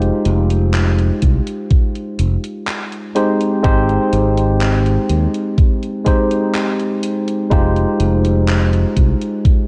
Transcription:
Already playing: G#3 D#4 F4 G4 C5
0.02 closed hi-hat
0.25 F1, closed hi-hat
0.50 closed hi-hat
0.74 clap, closed hi-hat
0.99 closed hi-hat
1.22 C2, kick, closed hi-hat
1.47 closed hi-hat
1.71 kick, closed hi-hat
1.95 closed hi-hat
2.19 F1, closed hi-hat
2.44 closed hi-hat
2.67 clap, closed hi-hat
2.92 closed hi-hat
3.15 G#3 C4 D#4 G4 C5, closed hi-hat
3.41 closed hi-hat
3.63 G#1 G#3 C4 D#4 G4 C5, kick, closed hi-hat
3.89 closed hi-hat
4.13 G#1, closed hi-hat
4.38 closed hi-hat
4.61 clap, closed hi-hat
4.86 closed hi-hat
5.09 D#2, closed hi-hat
5.34 closed hi-hat
5.58 kick, closed hi-hat
5.83 closed hi-hat
6.05 G#3 C4 D#4 G4 C5, kick, closed hi-hat
6.31 closed hi-hat
6.55 clap, closed hi-hat
6.80 closed hi-hat
7.03 closed hi-hat
7.28 closed hi-hat
7.50 F1 G#3 D#4 F4 G4 C5, kick, closed hi-hat
7.76 closed hi-hat
8.00 F1, closed hi-hat
8.25 closed hi-hat
8.48 clap, closed hi-hat
8.73 closed hi-hat
8.97 C2, kick, closed hi-hat
9.21 closed hi-hat
9.45 kick, closed hi-hat

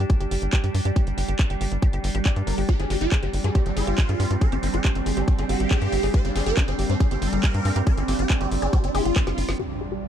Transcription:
Already playing: G3 D4 D5 G5
0.10 kick, closed hi-hat
0.21 G1 G4, closed hi-hat
0.31 G1 G4, open hi-hat
0.42 G1, closed hi-hat
0.53 G4, kick, clap, closed hi-hat
0.64 G2 G4, closed hi-hat
0.74 G2, open hi-hat
0.85 G2 G4, closed hi-hat
0.96 G4, kick, closed hi-hat
1.07 G1, closed hi-hat
1.18 G1 G4, open hi-hat
1.28 G1 G4, closed hi-hat
1.39 kick, clap, closed hi-hat
1.50 G1 G4, closed hi-hat
1.61 G1 G4, open hi-hat
1.72 G1, closed hi-hat
1.82 G4, kick, closed hi-hat
1.93 G1 G4, closed hi-hat
2.04 G1, open hi-hat
2.15 G#1 G4, closed hi-hat
2.26 D5, kick, clap, closed hi-hat
2.36 G2, closed hi-hat
2.47 G1 A#4, open hi-hat
2.58 G1 G4, open hi-hat
2.69 C4 G4, kick, closed hi-hat
2.80 G1 G3 G#4, closed hi-hat
2.90 G1 G3 G4, open hi-hat
3.01 G1 F4, closed hi-hat
3.12 G3 G#4, kick, clap, closed hi-hat
3.23 G1 G3 G4, closed hi-hat
3.33 G1, open hi-hat
3.44 G2 G3 G#4, closed hi-hat
3.55 G3 G4, kick, closed hi-hat
3.66 G1 G3, closed hi-hat
3.77 G1 F4 G#4, open hi-hat
3.87 G1 G4, closed hi-hat
3.93 F5
3.98 kick, clap, closed hi-hat
4.09 G2 G#4, closed hi-hat
4.20 G2 G4, open hi-hat
4.31 G2, closed hi-hat
4.41 G#4 A#4, kick, closed hi-hat
4.52 G1 D4 G4, closed hi-hat
4.63 G1 D4, open hi-hat
4.74 G1 G4 G#4, closed hi-hat
4.84 D4 G4, kick, clap, closed hi-hat
4.95 G1 D4, closed hi-hat
5.06 G1 G#4, open hi-hat
5.17 G1 D4 G4, closed hi-hat
5.28 D4, kick, closed hi-hat
5.38 G1 D4 G#4, closed hi-hat
5.49 G1 G4, open hi-hat
5.60 G#1, closed hi-hat
5.71 G#4, kick, clap, closed hi-hat
5.82 G2 G4, closed hi-hat
5.92 G1, open hi-hat
6.03 G1 G#4, open hi-hat
6.14 G4 C5, kick, closed hi-hat
6.25 G1 D4, closed hi-hat
6.36 G1 D4 G#4, open hi-hat
6.46 G1 G4 A#4, closed hi-hat
6.57 D4, kick, clap, closed hi-hat
6.68 G1 D4 G#4, closed hi-hat
6.79 G1 G4, open hi-hat
6.90 G2 D4, closed hi-hat
7.00 D4 G#4, kick, closed hi-hat
7.11 G1 D4 G4, closed hi-hat
7.22 G1 A#4, open hi-hat
7.33 G1 G#4, closed hi-hat
7.44 G4, kick, clap, closed hi-hat
7.54 G2, closed hi-hat
7.65 G2 G#4, open hi-hat
7.76 G2 G4, closed hi-hat
7.87 A#4, kick, closed hi-hat
7.97 G1 D4 G#4, closed hi-hat
8.08 G1 D4 G4, open hi-hat
8.19 G1 G4, closed hi-hat
8.30 D4 G#4, kick, clap, closed hi-hat
8.41 G1 D4 G4, closed hi-hat
8.51 G1, open hi-hat
8.62 G1 D4 G#4, closed hi-hat
8.73 D4 G4, kick, closed hi-hat
8.84 G1 D4, closed hi-hat
8.95 G1 F4 G#4, open hi-hat
9.05 G1 G5, closed hi-hat
9.16 kick, snare, clap, closed hi-hat
9.27 G1 G#4, snare, closed hi-hat
9.38 G1 F4, open hi-hat
9.49 G1, snare, open hi-hat
9.59 G3 D4 G4, impact
9.81 G#4
9.92 G4

